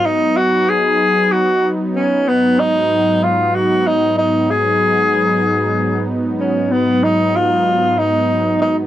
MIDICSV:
0, 0, Header, 1, 3, 480
1, 0, Start_track
1, 0, Tempo, 500000
1, 8512, End_track
2, 0, Start_track
2, 0, Title_t, "Tenor saxophone"
2, 0, Program_c, 0, 66
2, 53, Note_on_c, 0, 63, 97
2, 355, Note_on_c, 0, 66, 84
2, 369, Note_off_c, 0, 63, 0
2, 662, Note_on_c, 0, 68, 94
2, 677, Note_off_c, 0, 66, 0
2, 1267, Note_on_c, 0, 66, 84
2, 1282, Note_off_c, 0, 68, 0
2, 1620, Note_off_c, 0, 66, 0
2, 1879, Note_on_c, 0, 61, 79
2, 2187, Note_on_c, 0, 59, 90
2, 2201, Note_off_c, 0, 61, 0
2, 2493, Note_on_c, 0, 63, 86
2, 2507, Note_off_c, 0, 59, 0
2, 3108, Note_on_c, 0, 65, 76
2, 3123, Note_off_c, 0, 63, 0
2, 3411, Note_on_c, 0, 66, 85
2, 3425, Note_off_c, 0, 65, 0
2, 3715, Note_on_c, 0, 63, 82
2, 3730, Note_off_c, 0, 66, 0
2, 4008, Note_off_c, 0, 63, 0
2, 4014, Note_on_c, 0, 63, 79
2, 4327, Note_on_c, 0, 68, 93
2, 4341, Note_off_c, 0, 63, 0
2, 5847, Note_off_c, 0, 68, 0
2, 6146, Note_on_c, 0, 61, 72
2, 6446, Note_on_c, 0, 59, 84
2, 6461, Note_off_c, 0, 61, 0
2, 6754, Note_on_c, 0, 63, 75
2, 6768, Note_off_c, 0, 59, 0
2, 7063, Note_on_c, 0, 65, 81
2, 7077, Note_off_c, 0, 63, 0
2, 7664, Note_on_c, 0, 63, 79
2, 7679, Note_off_c, 0, 65, 0
2, 8267, Note_off_c, 0, 63, 0
2, 8273, Note_on_c, 0, 63, 73
2, 8410, Note_off_c, 0, 63, 0
2, 8512, End_track
3, 0, Start_track
3, 0, Title_t, "Analog synth pad"
3, 0, Program_c, 1, 89
3, 27, Note_on_c, 1, 54, 61
3, 44, Note_on_c, 1, 59, 59
3, 59, Note_on_c, 1, 63, 71
3, 2140, Note_off_c, 1, 54, 0
3, 2149, Note_off_c, 1, 59, 0
3, 2156, Note_off_c, 1, 63, 0
3, 2169, Note_on_c, 1, 44, 59
3, 2178, Note_on_c, 1, 54, 57
3, 2187, Note_on_c, 1, 59, 59
3, 2196, Note_on_c, 1, 63, 71
3, 4276, Note_off_c, 1, 44, 0
3, 4280, Note_off_c, 1, 54, 0
3, 4285, Note_off_c, 1, 59, 0
3, 4290, Note_off_c, 1, 63, 0
3, 4309, Note_on_c, 1, 44, 62
3, 4319, Note_on_c, 1, 54, 55
3, 4328, Note_on_c, 1, 59, 61
3, 4338, Note_on_c, 1, 63, 72
3, 6408, Note_off_c, 1, 44, 0
3, 6413, Note_off_c, 1, 54, 0
3, 6417, Note_off_c, 1, 59, 0
3, 6422, Note_off_c, 1, 63, 0
3, 6436, Note_on_c, 1, 44, 61
3, 6444, Note_on_c, 1, 54, 59
3, 6457, Note_on_c, 1, 59, 58
3, 6463, Note_on_c, 1, 63, 68
3, 8512, Note_off_c, 1, 44, 0
3, 8512, Note_off_c, 1, 54, 0
3, 8512, Note_off_c, 1, 59, 0
3, 8512, Note_off_c, 1, 63, 0
3, 8512, End_track
0, 0, End_of_file